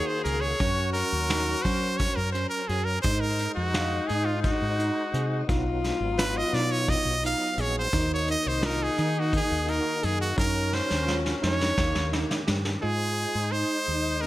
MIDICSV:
0, 0, Header, 1, 7, 480
1, 0, Start_track
1, 0, Tempo, 698487
1, 414, Time_signature, 7, 3, 24, 8
1, 9804, End_track
2, 0, Start_track
2, 0, Title_t, "Trumpet"
2, 0, Program_c, 0, 56
2, 47, Note_on_c, 0, 72, 84
2, 160, Note_off_c, 0, 72, 0
2, 164, Note_on_c, 0, 70, 86
2, 278, Note_on_c, 0, 73, 96
2, 288, Note_off_c, 0, 70, 0
2, 636, Note_off_c, 0, 73, 0
2, 640, Note_on_c, 0, 70, 93
2, 1114, Note_on_c, 0, 72, 92
2, 1124, Note_off_c, 0, 70, 0
2, 1356, Note_on_c, 0, 73, 88
2, 1366, Note_off_c, 0, 72, 0
2, 1479, Note_on_c, 0, 70, 83
2, 1490, Note_off_c, 0, 73, 0
2, 1592, Note_off_c, 0, 70, 0
2, 1596, Note_on_c, 0, 72, 78
2, 1710, Note_off_c, 0, 72, 0
2, 1714, Note_on_c, 0, 70, 83
2, 1841, Note_on_c, 0, 68, 81
2, 1851, Note_off_c, 0, 70, 0
2, 1953, Note_on_c, 0, 70, 82
2, 1964, Note_off_c, 0, 68, 0
2, 2070, Note_off_c, 0, 70, 0
2, 2074, Note_on_c, 0, 72, 90
2, 2203, Note_on_c, 0, 70, 83
2, 2213, Note_off_c, 0, 72, 0
2, 2434, Note_off_c, 0, 70, 0
2, 2438, Note_on_c, 0, 66, 82
2, 2796, Note_on_c, 0, 68, 83
2, 2807, Note_off_c, 0, 66, 0
2, 2921, Note_on_c, 0, 65, 75
2, 2931, Note_off_c, 0, 68, 0
2, 3037, Note_off_c, 0, 65, 0
2, 3041, Note_on_c, 0, 66, 77
2, 3740, Note_off_c, 0, 66, 0
2, 4249, Note_on_c, 0, 71, 94
2, 4379, Note_on_c, 0, 75, 92
2, 4389, Note_off_c, 0, 71, 0
2, 4494, Note_on_c, 0, 74, 96
2, 4505, Note_off_c, 0, 75, 0
2, 4614, Note_on_c, 0, 73, 97
2, 4624, Note_off_c, 0, 74, 0
2, 4735, Note_on_c, 0, 75, 105
2, 4746, Note_off_c, 0, 73, 0
2, 4975, Note_off_c, 0, 75, 0
2, 4988, Note_on_c, 0, 77, 101
2, 5225, Note_on_c, 0, 73, 94
2, 5235, Note_off_c, 0, 77, 0
2, 5339, Note_off_c, 0, 73, 0
2, 5352, Note_on_c, 0, 72, 100
2, 5567, Note_off_c, 0, 72, 0
2, 5590, Note_on_c, 0, 73, 90
2, 5694, Note_off_c, 0, 73, 0
2, 5708, Note_on_c, 0, 75, 100
2, 5825, Note_on_c, 0, 72, 90
2, 5835, Note_off_c, 0, 75, 0
2, 5945, Note_on_c, 0, 70, 91
2, 5955, Note_off_c, 0, 72, 0
2, 6066, Note_on_c, 0, 68, 89
2, 6077, Note_off_c, 0, 70, 0
2, 6317, Note_on_c, 0, 66, 81
2, 6327, Note_off_c, 0, 68, 0
2, 6425, Note_off_c, 0, 66, 0
2, 6433, Note_on_c, 0, 68, 89
2, 6661, Note_on_c, 0, 70, 80
2, 6671, Note_off_c, 0, 68, 0
2, 6901, Note_on_c, 0, 68, 83
2, 6912, Note_off_c, 0, 70, 0
2, 7013, Note_off_c, 0, 68, 0
2, 7017, Note_on_c, 0, 66, 86
2, 7127, Note_off_c, 0, 66, 0
2, 7140, Note_on_c, 0, 70, 90
2, 7380, Note_on_c, 0, 72, 92
2, 7390, Note_off_c, 0, 70, 0
2, 7671, Note_off_c, 0, 72, 0
2, 7860, Note_on_c, 0, 73, 90
2, 8309, Note_off_c, 0, 73, 0
2, 8811, Note_on_c, 0, 68, 94
2, 9289, Note_on_c, 0, 72, 99
2, 9300, Note_off_c, 0, 68, 0
2, 9764, Note_on_c, 0, 70, 90
2, 9774, Note_off_c, 0, 72, 0
2, 9804, Note_off_c, 0, 70, 0
2, 9804, End_track
3, 0, Start_track
3, 0, Title_t, "Alto saxophone"
3, 0, Program_c, 1, 65
3, 0, Note_on_c, 1, 68, 119
3, 413, Note_on_c, 1, 66, 108
3, 423, Note_off_c, 1, 68, 0
3, 1853, Note_off_c, 1, 66, 0
3, 2093, Note_on_c, 1, 63, 112
3, 3746, Note_off_c, 1, 63, 0
3, 3771, Note_on_c, 1, 65, 123
3, 5239, Note_off_c, 1, 65, 0
3, 5450, Note_on_c, 1, 63, 121
3, 7104, Note_off_c, 1, 63, 0
3, 7121, Note_on_c, 1, 61, 104
3, 8095, Note_on_c, 1, 58, 77
3, 8105, Note_off_c, 1, 61, 0
3, 8575, Note_off_c, 1, 58, 0
3, 8814, Note_on_c, 1, 63, 113
3, 9804, Note_off_c, 1, 63, 0
3, 9804, End_track
4, 0, Start_track
4, 0, Title_t, "Tine electric piano"
4, 0, Program_c, 2, 4
4, 0, Note_on_c, 2, 63, 76
4, 113, Note_off_c, 2, 63, 0
4, 171, Note_on_c, 2, 68, 76
4, 351, Note_off_c, 2, 68, 0
4, 414, Note_on_c, 2, 61, 82
4, 770, Note_off_c, 2, 61, 0
4, 892, Note_on_c, 2, 63, 81
4, 1071, Note_off_c, 2, 63, 0
4, 1134, Note_on_c, 2, 61, 78
4, 1490, Note_off_c, 2, 61, 0
4, 1611, Note_on_c, 2, 61, 73
4, 1790, Note_off_c, 2, 61, 0
4, 1856, Note_on_c, 2, 66, 67
4, 2033, Note_off_c, 2, 66, 0
4, 2097, Note_on_c, 2, 63, 84
4, 2452, Note_off_c, 2, 63, 0
4, 2576, Note_on_c, 2, 77, 81
4, 2754, Note_off_c, 2, 77, 0
4, 2814, Note_on_c, 2, 63, 77
4, 3170, Note_off_c, 2, 63, 0
4, 3292, Note_on_c, 2, 63, 78
4, 3471, Note_off_c, 2, 63, 0
4, 3533, Note_on_c, 2, 68, 70
4, 3712, Note_off_c, 2, 68, 0
4, 3772, Note_on_c, 2, 63, 80
4, 4129, Note_off_c, 2, 63, 0
4, 4254, Note_on_c, 2, 65, 88
4, 4432, Note_off_c, 2, 65, 0
4, 4494, Note_on_c, 2, 63, 79
4, 4850, Note_off_c, 2, 63, 0
4, 4976, Note_on_c, 2, 63, 79
4, 5153, Note_off_c, 2, 63, 0
4, 5215, Note_on_c, 2, 68, 73
4, 5393, Note_off_c, 2, 68, 0
4, 5455, Note_on_c, 2, 63, 87
4, 5811, Note_off_c, 2, 63, 0
4, 5932, Note_on_c, 2, 65, 80
4, 6111, Note_off_c, 2, 65, 0
4, 6172, Note_on_c, 2, 63, 87
4, 6529, Note_off_c, 2, 63, 0
4, 6647, Note_on_c, 2, 63, 81
4, 6828, Note_off_c, 2, 63, 0
4, 6888, Note_on_c, 2, 68, 78
4, 7068, Note_off_c, 2, 68, 0
4, 7126, Note_on_c, 2, 63, 84
4, 7485, Note_off_c, 2, 63, 0
4, 7606, Note_on_c, 2, 65, 88
4, 7787, Note_off_c, 2, 65, 0
4, 7849, Note_on_c, 2, 63, 79
4, 8207, Note_off_c, 2, 63, 0
4, 8331, Note_on_c, 2, 63, 80
4, 8510, Note_off_c, 2, 63, 0
4, 8570, Note_on_c, 2, 67, 78
4, 8750, Note_off_c, 2, 67, 0
4, 8813, Note_on_c, 2, 65, 77
4, 9171, Note_off_c, 2, 65, 0
4, 9294, Note_on_c, 2, 63, 75
4, 9651, Note_off_c, 2, 63, 0
4, 9779, Note_on_c, 2, 60, 77
4, 9804, Note_off_c, 2, 60, 0
4, 9804, End_track
5, 0, Start_track
5, 0, Title_t, "Tonewheel organ"
5, 0, Program_c, 3, 16
5, 0, Note_on_c, 3, 51, 76
5, 0, Note_on_c, 3, 58, 68
5, 0, Note_on_c, 3, 66, 79
5, 389, Note_off_c, 3, 51, 0
5, 391, Note_off_c, 3, 58, 0
5, 393, Note_off_c, 3, 66, 0
5, 411, Note_on_c, 3, 54, 63
5, 419, Note_on_c, 3, 61, 54
5, 420, Note_on_c, 3, 70, 69
5, 2065, Note_off_c, 3, 54, 0
5, 2069, Note_off_c, 3, 61, 0
5, 2069, Note_off_c, 3, 70, 0
5, 2086, Note_on_c, 3, 56, 63
5, 2091, Note_on_c, 3, 63, 59
5, 2096, Note_on_c, 3, 72, 70
5, 3742, Note_off_c, 3, 56, 0
5, 3745, Note_off_c, 3, 63, 0
5, 3747, Note_off_c, 3, 72, 0
5, 3758, Note_on_c, 3, 59, 76
5, 3765, Note_on_c, 3, 54, 67
5, 3770, Note_on_c, 3, 63, 82
5, 5418, Note_off_c, 3, 59, 0
5, 5422, Note_off_c, 3, 54, 0
5, 5424, Note_off_c, 3, 63, 0
5, 5445, Note_on_c, 3, 51, 65
5, 5450, Note_on_c, 3, 58, 61
5, 5456, Note_on_c, 3, 66, 68
5, 7102, Note_off_c, 3, 51, 0
5, 7104, Note_off_c, 3, 58, 0
5, 7107, Note_off_c, 3, 66, 0
5, 7124, Note_on_c, 3, 66, 69
5, 7131, Note_on_c, 3, 61, 59
5, 7136, Note_on_c, 3, 70, 73
5, 8070, Note_off_c, 3, 66, 0
5, 8073, Note_off_c, 3, 61, 0
5, 8076, Note_off_c, 3, 70, 0
5, 8091, Note_on_c, 3, 51, 67
5, 8093, Note_on_c, 3, 61, 63
5, 8099, Note_on_c, 3, 67, 72
5, 8809, Note_on_c, 3, 56, 58
5, 8812, Note_on_c, 3, 63, 51
5, 8813, Note_off_c, 3, 51, 0
5, 8814, Note_off_c, 3, 61, 0
5, 8817, Note_off_c, 3, 67, 0
5, 8818, Note_on_c, 3, 72, 67
5, 9804, Note_off_c, 3, 56, 0
5, 9804, Note_off_c, 3, 63, 0
5, 9804, Note_off_c, 3, 72, 0
5, 9804, End_track
6, 0, Start_track
6, 0, Title_t, "Fingered electric bass"
6, 0, Program_c, 4, 33
6, 174, Note_on_c, 4, 37, 84
6, 365, Note_off_c, 4, 37, 0
6, 415, Note_on_c, 4, 42, 88
6, 701, Note_off_c, 4, 42, 0
6, 773, Note_on_c, 4, 39, 81
6, 1060, Note_off_c, 4, 39, 0
6, 1133, Note_on_c, 4, 54, 83
6, 1420, Note_off_c, 4, 54, 0
6, 1492, Note_on_c, 4, 42, 81
6, 1684, Note_off_c, 4, 42, 0
6, 1850, Note_on_c, 4, 42, 78
6, 2043, Note_off_c, 4, 42, 0
6, 2092, Note_on_c, 4, 44, 89
6, 2379, Note_off_c, 4, 44, 0
6, 2453, Note_on_c, 4, 41, 81
6, 2740, Note_off_c, 4, 41, 0
6, 2818, Note_on_c, 4, 44, 85
6, 3103, Note_off_c, 4, 44, 0
6, 3173, Note_on_c, 4, 44, 83
6, 3365, Note_off_c, 4, 44, 0
6, 3530, Note_on_c, 4, 48, 86
6, 3722, Note_off_c, 4, 48, 0
6, 3772, Note_on_c, 4, 35, 92
6, 4059, Note_off_c, 4, 35, 0
6, 4126, Note_on_c, 4, 32, 78
6, 4415, Note_off_c, 4, 32, 0
6, 4487, Note_on_c, 4, 47, 87
6, 4776, Note_off_c, 4, 47, 0
6, 4845, Note_on_c, 4, 35, 80
6, 5040, Note_off_c, 4, 35, 0
6, 5207, Note_on_c, 4, 34, 88
6, 5401, Note_off_c, 4, 34, 0
6, 5450, Note_on_c, 4, 39, 93
6, 5738, Note_off_c, 4, 39, 0
6, 5816, Note_on_c, 4, 36, 79
6, 6101, Note_off_c, 4, 36, 0
6, 6175, Note_on_c, 4, 51, 88
6, 6461, Note_off_c, 4, 51, 0
6, 6538, Note_on_c, 4, 39, 89
6, 6727, Note_off_c, 4, 39, 0
6, 6899, Note_on_c, 4, 42, 88
6, 7088, Note_off_c, 4, 42, 0
6, 7134, Note_on_c, 4, 42, 101
6, 7420, Note_off_c, 4, 42, 0
6, 7498, Note_on_c, 4, 39, 85
6, 7783, Note_off_c, 4, 39, 0
6, 7857, Note_on_c, 4, 41, 87
6, 8047, Note_off_c, 4, 41, 0
6, 8094, Note_on_c, 4, 39, 103
6, 8190, Note_off_c, 4, 39, 0
6, 8219, Note_on_c, 4, 39, 83
6, 8408, Note_off_c, 4, 39, 0
6, 8579, Note_on_c, 4, 43, 89
6, 8768, Note_off_c, 4, 43, 0
6, 8818, Note_on_c, 4, 44, 86
6, 9104, Note_off_c, 4, 44, 0
6, 9175, Note_on_c, 4, 44, 82
6, 9366, Note_off_c, 4, 44, 0
6, 9538, Note_on_c, 4, 39, 80
6, 9804, Note_off_c, 4, 39, 0
6, 9804, End_track
7, 0, Start_track
7, 0, Title_t, "Drums"
7, 172, Note_on_c, 9, 42, 63
7, 241, Note_off_c, 9, 42, 0
7, 413, Note_on_c, 9, 42, 83
7, 414, Note_on_c, 9, 36, 103
7, 482, Note_off_c, 9, 36, 0
7, 482, Note_off_c, 9, 42, 0
7, 654, Note_on_c, 9, 42, 63
7, 723, Note_off_c, 9, 42, 0
7, 893, Note_on_c, 9, 38, 107
7, 893, Note_on_c, 9, 42, 81
7, 962, Note_off_c, 9, 38, 0
7, 962, Note_off_c, 9, 42, 0
7, 1133, Note_on_c, 9, 42, 62
7, 1134, Note_on_c, 9, 36, 75
7, 1201, Note_off_c, 9, 42, 0
7, 1203, Note_off_c, 9, 36, 0
7, 1370, Note_on_c, 9, 42, 80
7, 1373, Note_on_c, 9, 36, 102
7, 1439, Note_off_c, 9, 42, 0
7, 1442, Note_off_c, 9, 36, 0
7, 1613, Note_on_c, 9, 42, 59
7, 1681, Note_off_c, 9, 42, 0
7, 1850, Note_on_c, 9, 42, 60
7, 1919, Note_off_c, 9, 42, 0
7, 2089, Note_on_c, 9, 42, 79
7, 2092, Note_on_c, 9, 36, 108
7, 2158, Note_off_c, 9, 42, 0
7, 2161, Note_off_c, 9, 36, 0
7, 2329, Note_on_c, 9, 42, 54
7, 2398, Note_off_c, 9, 42, 0
7, 2571, Note_on_c, 9, 38, 102
7, 2571, Note_on_c, 9, 42, 83
7, 2640, Note_off_c, 9, 38, 0
7, 2640, Note_off_c, 9, 42, 0
7, 2812, Note_on_c, 9, 42, 54
7, 2880, Note_off_c, 9, 42, 0
7, 3050, Note_on_c, 9, 42, 74
7, 3052, Note_on_c, 9, 36, 104
7, 3118, Note_off_c, 9, 42, 0
7, 3121, Note_off_c, 9, 36, 0
7, 3295, Note_on_c, 9, 42, 55
7, 3363, Note_off_c, 9, 42, 0
7, 3532, Note_on_c, 9, 42, 60
7, 3601, Note_off_c, 9, 42, 0
7, 3773, Note_on_c, 9, 36, 108
7, 3773, Note_on_c, 9, 42, 75
7, 3841, Note_off_c, 9, 42, 0
7, 3842, Note_off_c, 9, 36, 0
7, 4014, Note_on_c, 9, 38, 33
7, 4014, Note_on_c, 9, 42, 57
7, 4083, Note_off_c, 9, 38, 0
7, 4083, Note_off_c, 9, 42, 0
7, 4251, Note_on_c, 9, 38, 108
7, 4251, Note_on_c, 9, 42, 86
7, 4320, Note_off_c, 9, 38, 0
7, 4320, Note_off_c, 9, 42, 0
7, 4493, Note_on_c, 9, 38, 33
7, 4493, Note_on_c, 9, 42, 65
7, 4562, Note_off_c, 9, 38, 0
7, 4562, Note_off_c, 9, 42, 0
7, 4728, Note_on_c, 9, 42, 85
7, 4731, Note_on_c, 9, 36, 98
7, 4797, Note_off_c, 9, 42, 0
7, 4800, Note_off_c, 9, 36, 0
7, 4970, Note_on_c, 9, 42, 62
7, 5039, Note_off_c, 9, 42, 0
7, 5206, Note_on_c, 9, 42, 67
7, 5275, Note_off_c, 9, 42, 0
7, 5448, Note_on_c, 9, 42, 87
7, 5450, Note_on_c, 9, 36, 103
7, 5517, Note_off_c, 9, 42, 0
7, 5519, Note_off_c, 9, 36, 0
7, 5687, Note_on_c, 9, 42, 62
7, 5755, Note_off_c, 9, 42, 0
7, 5928, Note_on_c, 9, 38, 109
7, 5928, Note_on_c, 9, 42, 85
7, 5996, Note_off_c, 9, 38, 0
7, 5996, Note_off_c, 9, 42, 0
7, 6171, Note_on_c, 9, 42, 60
7, 6240, Note_off_c, 9, 42, 0
7, 6412, Note_on_c, 9, 36, 101
7, 6412, Note_on_c, 9, 42, 84
7, 6480, Note_off_c, 9, 42, 0
7, 6481, Note_off_c, 9, 36, 0
7, 6652, Note_on_c, 9, 42, 60
7, 6720, Note_off_c, 9, 42, 0
7, 6891, Note_on_c, 9, 42, 62
7, 6960, Note_off_c, 9, 42, 0
7, 7130, Note_on_c, 9, 42, 76
7, 7132, Note_on_c, 9, 36, 110
7, 7198, Note_off_c, 9, 42, 0
7, 7201, Note_off_c, 9, 36, 0
7, 7373, Note_on_c, 9, 38, 59
7, 7442, Note_off_c, 9, 38, 0
7, 7492, Note_on_c, 9, 38, 56
7, 7561, Note_off_c, 9, 38, 0
7, 7615, Note_on_c, 9, 38, 71
7, 7684, Note_off_c, 9, 38, 0
7, 7736, Note_on_c, 9, 38, 63
7, 7804, Note_off_c, 9, 38, 0
7, 7857, Note_on_c, 9, 38, 77
7, 7925, Note_off_c, 9, 38, 0
7, 7978, Note_on_c, 9, 38, 67
7, 8046, Note_off_c, 9, 38, 0
7, 8093, Note_on_c, 9, 38, 85
7, 8094, Note_on_c, 9, 36, 104
7, 8162, Note_off_c, 9, 36, 0
7, 8162, Note_off_c, 9, 38, 0
7, 8214, Note_on_c, 9, 38, 78
7, 8282, Note_off_c, 9, 38, 0
7, 8337, Note_on_c, 9, 38, 85
7, 8405, Note_off_c, 9, 38, 0
7, 8458, Note_on_c, 9, 38, 89
7, 8526, Note_off_c, 9, 38, 0
7, 8574, Note_on_c, 9, 38, 106
7, 8642, Note_off_c, 9, 38, 0
7, 8693, Note_on_c, 9, 38, 86
7, 8762, Note_off_c, 9, 38, 0
7, 9804, End_track
0, 0, End_of_file